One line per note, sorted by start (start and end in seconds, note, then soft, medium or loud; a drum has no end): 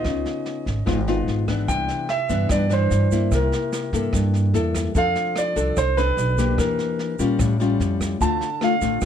0.00 0.64 B3 medium
0.00 0.64 D#4 medium
0.00 0.64 F4 medium
0.00 1.25 D#5 medium
0.04 0.24 C#2 medium
0.04 0.85 C#3 medium
0.04 kick medium
0.04 cross-stick medium
0.04 snare soft
0.25 snare soft
0.46 snare soft
0.66 0.86 G#1 medium
0.66 kick soft
0.66 snare soft
0.86 1.25 G#1 loud
0.86 1.66 G#2 medium
0.86 0.99 B3 medium
0.86 0.99 D#4 medium
0.86 0.99 F4 medium
0.86 kick medium
0.86 cross-stick medium
0.86 snare soft
1.08 1.45 B3 medium
1.08 1.45 D#4 medium
1.08 1.45 F4 medium
1.08 snare soft
1.27 1.66 G#1 medium
1.27 snare soft
1.48 2.06 E3 medium
1.48 2.06 B3 medium
1.48 2.06 D4 medium
1.48 kick soft
1.48 cross-stick medium
1.48 snare soft
1.68 1.88 C2 medium
1.68 2.48 C3 medium
1.68 2.11 G5 loud
1.68 kick medium
1.68 snare soft
1.68 shaker medium
1.88 snare soft
1.88 shaker soft
2.09 2.48 E5 medium
2.09 cross-stick medium
2.09 snare soft
2.29 2.49 G2 medium
2.29 2.67 E3 medium
2.29 2.67 B3 medium
2.29 2.67 D4 medium
2.29 kick soft
2.29 snare soft
2.29 shaker medium
2.49 3.29 G2 medium
2.49 2.88 G2 loud
2.49 2.72 D5 medium
2.49 kick medium
2.49 cross-stick medium
2.49 snare soft
2.49 shaker medium
2.70 3.08 E3 medium
2.70 3.08 D4 medium
2.70 3.35 C5 medium
2.70 snare soft
2.70 shaker soft
2.91 3.29 G2 loud
2.91 snare soft
2.91 shaker medium
3.11 3.90 A#3 medium
3.11 3.90 E4 medium
3.11 kick soft
3.11 snare soft
3.11 shaker medium
3.31 3.51 C2 medium
3.31 4.11 C3 medium
3.31 4.11 A#4 medium
3.31 kick medium
3.31 cross-stick soft
3.31 snare soft
3.31 shaker medium
3.52 snare soft
3.52 shaker soft
3.72 snare soft
3.72 shaker medium
3.92 4.12 G2 medium
3.92 4.51 A#3 medium
3.92 4.51 E4 medium
3.92 4.51 A4 medium
3.92 kick soft
3.92 snare soft
3.92 shaker medium
4.13 4.51 G2 loud
4.13 4.93 G2 medium
4.13 kick medium
4.13 cross-stick medium
4.13 snare soft
4.13 shaker medium
4.34 snare soft
4.34 shaker soft
4.54 4.92 E2 medium
4.54 4.91 A#3 medium
4.54 4.92 E4 medium
4.54 4.92 A4 medium
4.54 snare soft
4.54 shaker medium
4.75 kick soft
4.75 cross-stick medium
4.75 snare soft
4.75 shaker medium
4.95 5.14 F2 medium
4.95 5.75 F3 medium
4.95 5.53 C4 medium
4.95 5.53 D4 medium
4.95 5.53 A4 medium
4.95 5.38 F5 loud
4.95 kick medium
4.95 snare soft
4.95 shaker medium
5.16 snare soft
5.16 shaker soft
5.36 5.79 D5 loud
5.36 cross-stick medium
5.36 snare soft
5.36 shaker medium
5.56 5.75 C2 medium
5.56 5.93 C4 medium
5.56 5.93 D4 medium
5.56 5.94 A4 medium
5.56 kick soft
5.56 snare soft
5.56 shaker medium
5.77 6.14 C2 loud
5.77 5.98 C5 medium
5.77 kick medium
5.77 cross-stick medium
5.77 snare soft
5.77 shaker medium
5.97 6.34 C4 medium
5.97 6.35 D4 medium
5.97 6.35 A4 medium
5.97 6.54 B4 loud
5.97 snare soft
5.97 shaker soft
6.17 6.55 B1 loud
6.17 snare soft
6.17 shaker medium
6.38 7.16 A#3 medium
6.38 7.16 D4 medium
6.38 7.16 G4 medium
6.38 kick soft
6.38 snare soft
6.38 shaker medium
6.58 6.77 E2 medium
6.58 7.19 E3 medium
6.58 7.35 A#4 medium
6.58 kick medium
6.58 cross-stick medium
6.58 snare soft
6.58 shaker medium
6.79 snare soft
6.79 shaker soft
6.99 snare soft
7.19 7.38 A#2 medium
7.19 7.56 G3 medium
7.19 7.57 C#4 medium
7.19 7.57 F4 medium
7.19 kick soft
7.19 snare soft
7.19 shaker medium
7.38 7.77 A1 loud
7.38 8.18 A2 medium
7.38 kick medium
7.38 cross-stick medium
7.38 snare soft
7.38 shaker medium
7.60 8.18 G3 medium
7.60 8.18 C#4 medium
7.60 8.18 F4 medium
7.60 snare soft
7.60 shaker soft
7.80 8.18 F2 medium
7.80 snare soft
7.80 shaker medium
8.00 kick soft
8.00 cross-stick medium
8.00 snare soft
8.00 shaker medium
8.21 8.40 D2 medium
8.21 9.00 D3 medium
8.21 8.47 A3 medium
8.21 8.47 C4 medium
8.21 8.48 F4 medium
8.21 8.63 A5 medium
8.21 kick medium
8.21 snare soft
8.21 shaker medium
8.41 snare soft
8.41 shaker soft
8.61 8.74 A3 soft
8.61 8.74 C4 medium
8.61 8.74 F4 medium
8.61 9.01 F5 medium
8.61 cross-stick medium
8.61 snare soft
8.81 9.01 A1 medium
8.81 8.99 A3 medium
8.81 8.99 C4 medium
8.81 8.99 F4 medium
8.81 kick soft
8.81 snare soft
8.81 shaker medium
9.01 9.05 A1 loud
9.01 9.05 A2 medium
9.01 9.05 A3 medium
9.01 kick medium
9.01 cross-stick medium
9.01 snare soft
9.01 shaker medium